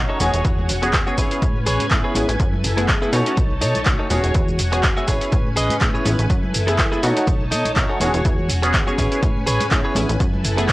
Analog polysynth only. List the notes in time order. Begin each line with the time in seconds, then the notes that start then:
Already playing: A3 C#4 D#4 F#4
0.20 B3 C#4 F#4 G#4
0.82 B3 C#4 F#4 G#4
1.07 B3 C#4 F#4 G#4
1.18 B3 C#4 E4 G#4
1.31 B3 C#4 E4 G#4
1.91 B3 C#4 E4 G#4
2.15 B3 C#4 E4 G#4
2.77 A3 B3 E4 G#4
3.01 A3 B3 E4 G#4
3.13 A3 C#4 D#4 F#4
3.26 A3 C#4 D#4 F#4
3.86 A3 C#4 D#4 F#4
4.10 B3 C#4 F#4 G#4
4.72 B3 C#4 F#4 G#4
4.97 B3 C#4 F#4 G#4
5.07 B3 C#4 E4 G#4
5.21 B3 C#4 E4 G#4
5.81 B3 C#4 E4 G#4
6.05 B3 C#4 E4 G#4
6.67 A3 B3 E4 G#4
6.92 A3 B3 E4 G#4
7.03 A3 C#4 D#4 F#4
7.16 A3 C#4 D#4 F#4
7.76 A3 C#4 D#4 F#4
8.00 B3 C#4 F#4 G#4
8.63 B3 C#4 F#4 G#4
8.87 B3 C#4 F#4 G#4
8.98 B3 C#4 E4 G#4
9.11 B3 C#4 E4 G#4
9.71 B3 C#4 E4 G#4
9.96 B3 C#4 E4 G#4
10.58 A3 B3 E4 G#4